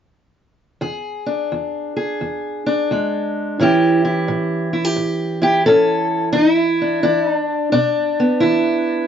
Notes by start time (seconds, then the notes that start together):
0.81 E2 G#4
1.26 D4
1.52 E2
1.97 G#4
2.21 E2
2.66 D4
2.91 E2 G#3
3.59 A2 E3 C#4 E4 G4
4.05 E4
4.28 A2
4.73 E4
4.85 G4
4.96 A2
5.42 E4 G4
5.66 A2 C#4 A4
6.33 E2 D#4
6.53 E4
6.82 D4
7.03 E3 D4
7.24 D#4
7.37 D4
7.72 B2 D4
8.20 B3
8.40 E3 E4